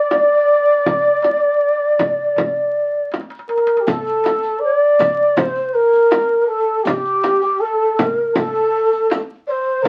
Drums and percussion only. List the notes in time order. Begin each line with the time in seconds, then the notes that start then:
0.11 darbuka tek, frame drum
0.85 darbuka dum, frame drum
1.22 darbuka tek, frame drum
1.42 darbuka ka
1.61 darbuka ka
1.80 darbuka ka
1.99 frame drum, darbuka dum
2.36 darbuka dum, frame drum
2.56 darbuka ka
2.94 darbuka ka
3.12 darbuka tek, frame drum
3.21 darbuka ka
3.30 darbuka tek
3.39 darbuka ka
3.49 darbuka tek
3.58 darbuka ka
3.67 darbuka tek
3.77 darbuka ka
3.87 riq, darbuka dum, frame drum
4.06 riq, darbuka ka
4.24 riq, darbuka tek, frame drum
4.43 riq
4.62 darbuka ka
4.82 darbuka ka
4.99 riq, darbuka dum, frame drum
5.36 riq, darbuka dum, frame drum
5.55 riq
5.75 darbuka ka
5.93 riq, darbuka ka
6.11 riq, darbuka tek, frame drum
6.49 darbuka ka
6.85 riq, darbuka dum, frame drum
7.05 riq, darbuka ka
7.23 riq, darbuka tek, frame drum
7.42 riq, darbuka ka
7.61 darbuka ka
7.81 darbuka ka
7.99 riq, frame drum, darbuka dum
8.35 riq, frame drum, darbuka dum
8.55 riq
8.74 darbuka ka
8.92 riq, darbuka ka
9.10 riq, darbuka tek, frame drum
9.47 darbuka ka
9.83 darbuka dum, frame drum